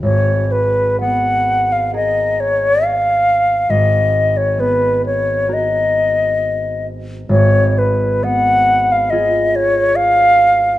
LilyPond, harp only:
\new Staff \with { instrumentName = "Harp" } { \time 4/4 \key gis \dorian \tempo 4 = 67 <gis,, fis' ais'>4 b4 <gis' ais'>2 | gis,,4 b4 <fis' ais'>2 | gis,,4 b4 <eis' gis'>2 | }